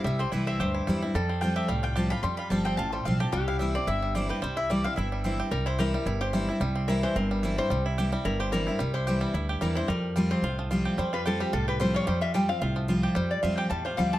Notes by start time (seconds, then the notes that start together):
Already playing: C4 E4 G4
0.04 C2 C3 G3 E5
0.19 C4 C5
0.32 C2 E3 G3 C4 E4 B4
0.47 C4 E5
0.60 D2 G2 G4 C5
0.74 E4
0.87 E2 E3 G3 C4 E4
1.02 C4 E4
1.14 F2 G3 A4
1.29 C4
1.41 F3 G3 C4 F4 G5
1.56 G4 E5
1.68 C2 A2 G3 F5
1.83 F4 G5
1.96 F3 G3 C4 F4 G4 A5
2.10 C4 F4 B5
2.23 F2 G3 C6
2.37 F4 B5
2.50 G1 F3 G3 C4 F4 A5
2.65 C4 G5
2.77 A1 A2 F4 A5
2.92 G3 C5
3.05 B1 F3 G3 C4 F4 F5
3.20 C4 F4 G4 A5
3.32 C2 C3 G3 G4 G5
3.48 E4 F5
3.59 E3 G3 C4 E4 E5
3.75 C4 E4 D5
3.87 G1 G2 E4 E5
4.03 G3
4.15 E3 G3 C4 E4 D5
4.29 C4 E4 G4 B4
4.42 C2 C3 G3 C5
4.57 E4 E5
4.70 E3 G3 C4 E4 D5
4.84 C4 E4 F5
4.96 G1 G2 E4 E5
5.12 G3
5.24 E3 G3 C4 E4
5.39 C4 E4 G4
5.51 C2 C3 G3 A#4
5.66 E4 C5
5.79 E3 G3 C4 E4 G4 A#4
5.94 G3 C4 E4
6.06 G1 G2 E4
6.21 G4 C5
6.33 E3 G3 C4 E4
6.49 C4 E4
6.60 C2 C3 G3
6.75 C4
6.88 E3 G3 C4 E4 A#4
7.03 E3 C5
7.15 G1 G2 C4 A#4
7.31 G3
7.43 E3 G3 C4 E4
7.58 G3 C4 E4 C5
7.70 C2 C3 G3
7.86 E4
7.98 E3 G3 C4 E4 G4
8.12 G3 C4 E4
8.25 G1 G2 E4 A#4
8.40 G4 C5
8.52 E3 G3 C4 E4 A#4
8.67 C4 E4
8.79 C2 C3 G3
8.94 E4 C5
9.07 E3 G3 C4 E4 G4
9.21 G3
9.34 D2 G2 E4
9.49 G4
9.61 E2 E3 G3 C4 E4 A#4
9.75 C4 E4 C5
9.88 F2 G3 A#4
10.16 F3 G3 C4 F4
10.31 C4 C5
10.42 C2 A2 F4
10.59 F3
10.71 F3 G3 C4 F4
10.85 G4
10.97 F2 G3 C5
11.13 F4 B4
11.26 F3 G3 C4 F4 G4 A4
11.40 G3 G4
11.53 C2 A2 F4 A4
11.68 G4 B4
11.80 F3 G3 C4 F4 C5
11.95 F4 C#5
12.07 F2 G3 C5
12.21 F4 E5
12.34 F3 G3 C4 F4 G5
12.49 C4 F4 F5
12.61 C2 A2 F4 E5
12.76 F3
12.88 F3 G3 C4 F4
13.03 G4
13.15 F2 G3 C5
13.31 D5
13.43 F2 F3 G3 C4 F4 E5
13.57 G4 G5
13.70 E2 A2 G3 A5
13.85 F4 C5
13.97 D2 F3 G3 C4 F4 F5
14.13 C4 A5